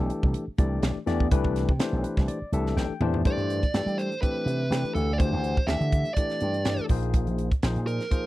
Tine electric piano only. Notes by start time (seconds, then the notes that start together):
Already playing: E3 A3 D4 G4 A4
0.58 E3 A3 D4 G4 D5
1.06 E3 A3 D4 G4 D5
1.32 E3 A3 D4 G4 B4
1.79 E3 A3 D4 G4 C5
2.04 B4
2.28 D5
2.53 E3 A3 D4 G4 A4 E5
2.77 G5
3.01 E3 A3 D4 G4 C5 A5
3.25 E3 A3 D4 G4 C5
3.74 E3 A3 D4 G4 A4
4.22 E3 A3 C4 D4 G4
4.70 E3 A3 D4 G4 B4
5.19 E3 A3 D4 G4 C5
5.69 E3 A3 D4 G4 A4
6.17 E3 A3 D4 G4 D5
6.65 E3 A3 D4 G4 D5
6.90 F3 A#3 D#4 G#4 C5
7.63 F3 A#3 D#4 G#4 C5
8.11 F3 A#3 D#4 G#4 C5